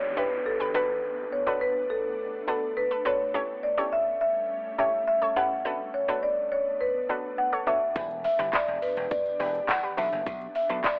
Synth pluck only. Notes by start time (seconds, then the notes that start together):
0.17 B3 D4 E4 G4 B4
0.60 G4 B4
0.74 B3 D4 F#4 A4 B4
1.47 B3 D4 F#4 A4 B4
2.48 B3 D4 F#4 A4 B4
2.91 A4 B4
3.05 B3 D4 F#4 A4 B4
3.34 C#4 E4 G4 A4 C#5
3.78 C#4 E4 G4 A4 C#5
4.78 C#4 E4 G4 A4 C#5
5.22 A4 C#5
5.36 C#4 E4 G4 A4 B4
5.65 B3 D4 F#4 A4 B4
6.08 B3 D4 F#4 A4 B4
7.09 B3 D4 F#4 A4 B4
7.52 A4 C#5
7.67 B3 D4 F#4 A4 C#5
7.96 B3 D4 E4 G4 B4
8.39 B3 D4 E4 G4 B4
9.40 B3 D4 E4 G4 B4
9.83 G4 B4
9.97 B3 D4 F#4 A4 B4
10.69 B3 D4 F#4 A4 B4